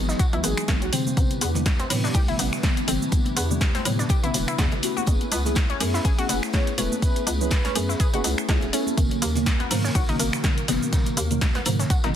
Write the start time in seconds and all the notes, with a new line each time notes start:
Already playing: G#1 E3 F#3 G#3 B3 D#4 F#4 G#4
0.09 D#4, snare, shaker
0.19 F#4, kick, closed hi-hat, tambourine, shaker
0.33 C#2 E3 F#3 G#3 B3 D#4 E4, closed hi-hat
0.43 G#1 B3 G#4, open hi-hat, tambourine, muted conga, high conga, shaker
0.57 finger snap, shaker
0.68 G#1 E3 F#3 G#3 B3 D#4, kick, snare, closed hi-hat, tambourine, shaker
0.82 B1 F#4, closed hi-hat, muted conga
0.92 C3 D3 E3 G3 A3 C4 D4 E4 G4 B4, open hi-hat, tambourine, shaker
1.07 high conga, shaker
1.17 A1 C3 D3 E3 G3 B3, kick, closed hi-hat, tambourine, shaker
1.30 closed hi-hat, muted conga
1.41 E2 B3, open hi-hat, tambourine, shaker
1.55 C3 D3 E3 G3 B3, closed hi-hat, high conga, low conga, shaker
1.66 kick, snare, closed hi-hat, tambourine, shaker
1.79 C4, closed hi-hat, muted conga
1.90 A2 C3 D3 E3 G3 B3, open hi-hat, low conga, shaker
2.04 D4, snare, shaker
2.14 C2 G4, kick, closed hi-hat, tambourine, shaker
2.28 C3 D3 E3 G3 B3 E4, closed hi-hat
2.38 A1 B3, open hi-hat, tambourine, muted conga, high conga, shaker
2.53 finger snap, snare, shaker
2.63 C3 D3 E3 G3 B3, kick, snare, closed hi-hat, tambourine, shaker
2.77 closed hi-hat
2.88 G1 C3 D3 E3 G3 C4, open hi-hat, tambourine, shaker
3.01 high conga, shaker
3.12 C3 D3 E3 G3 B3, kick, closed hi-hat, tambourine, shaker
3.25 closed hi-hat, muted conga
3.37 E2 B3, open hi-hat, tambourine, shaker
3.50 C3 D3 E3 G3 B3, high conga, low conga, shaker
3.61 kick, snare, closed hi-hat, tambourine, shaker
3.75 C4, snare, closed hi-hat, muted conga
3.85 A2 C3 D3 E3 G3 B3, open hi-hat, tambourine, low conga, shaker
3.99 D4, snare, closed hi-hat, shaker
4.09 G4, kick, closed hi-hat, tambourine, shaker
4.23 A1 C3 D3 E3 G3 B3 E4, closed hi-hat
4.34 E1, open hi-hat, tambourine, muted conga, high conga, shaker
4.48 E4, finger snap, shaker
4.58 E2 C3 D3 E3 G3 B3 D4, kick, snare, closed hi-hat, tambourine, shaker
4.72 G1, closed hi-hat, muted conga
4.82 A3 B3 C#4 E4 F#4 G#4, open hi-hat, tambourine, shaker
4.97 F#4, high conga, shaker
5.06 F#1 A3 B3 C#4 E4 G#4, kick, closed hi-hat, tambourine, shaker
5.21 closed hi-hat, muted conga
5.31 C#2 B3, open hi-hat, tambourine, shaker
5.45 A3 B3 C#4 E4 G#4, closed hi-hat, high conga, low conga, shaker
5.55 kick, snare, closed hi-hat, tambourine, shaker
5.70 C#4, closed hi-hat, muted conga
5.80 F#2 A3 B3 C#4 E4 G#4, open hi-hat, low conga, shaker
5.94 E4, snare, shaker
6.05 A1 G#4, kick, closed hi-hat, tambourine, shaker
6.18 A3 B3 C#4 E4 F#4 G#4, closed hi-hat
6.29 F#1 B3, open hi-hat, tambourine, muted conga, high conga, shaker
6.43 finger snap, snare, shaker
6.53 A3 B3 C#4 E4 G#4 C#5, kick, snare, closed hi-hat, tambourine, shaker
6.67 closed hi-hat
6.78 E1 A3 B3 C#4 E4 A4 B4, open hi-hat, tambourine, shaker
6.92 high conga, shaker
7.02 A3 B3 C#4 E4 G#4 B4, kick, closed hi-hat, tambourine, shaker
7.16 closed hi-hat, muted conga
7.27 C#2 B3, open hi-hat, tambourine, shaker
7.40 A3 B3 C#4 E4 G#4 B4, high conga, low conga, shaker
7.51 kick, snare, closed hi-hat, tambourine, shaker
7.65 C#4, snare, closed hi-hat, muted conga
7.75 F#2 A3 B3 C#4 E4 G#4, open hi-hat, tambourine, low conga, shaker
7.89 E4, snare, shaker
8.00 G#4 B4, kick, closed hi-hat, tambourine, shaker
8.13 F#1 A3 B3 C#4 E4 F#4 G#4 B4, closed hi-hat
8.24 C#2 B3, open hi-hat, tambourine, muted conga, high conga, shaker
8.38 finger snap, shaker
8.48 C#2 A3 B3 C#4 E4 G#4, kick, snare, closed hi-hat, tambourine, shaker
8.61 E1, closed hi-hat, muted conga
8.73 A3 B3 C#4 E4 A4, open hi-hat, tambourine, shaker
8.87 high conga, shaker
8.97 G#1 B2 C#3 D#3 F#3 A#3 D#4 F#4 A#4, kick, closed hi-hat, tambourine, shaker
9.11 closed hi-hat, muted conga
9.22 D#2 A#3, open hi-hat, tambourine, shaker
9.35 B2 C#3 D#3 F#3 A#3, closed hi-hat, high conga, low conga, shaker
9.46 kick, snare, closed hi-hat, tambourine, shaker
9.60 B3, closed hi-hat, muted conga
9.70 G#2 B2 C#3 D#3 F#3 A#3, open hi-hat, low conga, shaker
9.84 C#4, snare, shaker
9.95 B1 F#4, kick, closed hi-hat, tambourine, shaker
10.09 B2 C#3 D#3 F#3 A#3 D#4, closed hi-hat
10.19 G#1 A#3, open hi-hat, tambourine, muted conga, high conga, shaker
10.33 finger snap, snare, shaker
10.44 B2 C#3 D#3 F#3 A#3, kick, snare, closed hi-hat, tambourine, shaker
10.58 closed hi-hat
10.68 F#1 B2 C#3 D#3 F#3 B3, snare, open hi-hat, tambourine, shaker
10.81 high conga, shaker
10.92 B2 C#3 D#3 F#3 A#3, kick, snare, closed hi-hat, tambourine, shaker
11.06 closed hi-hat, muted conga
11.17 D#2 A#3, open hi-hat, tambourine, shaker
11.31 B2 C#3 D#3 F#3 A#3, closed hi-hat, high conga, low conga, shaker
11.41 kick, snare, closed hi-hat, tambourine, shaker
11.54 B3, snare, closed hi-hat, muted conga
11.65 G#2 B2 C#3 D#3 F#3 A#3, open hi-hat, tambourine, low conga, shaker
11.79 C#4, snare, closed hi-hat, shaker
11.90 F#4, kick, closed hi-hat, tambourine, shaker
12.04 G#1 B2 C#3 D#3 F#3 A#3 D#4, snare, closed hi-hat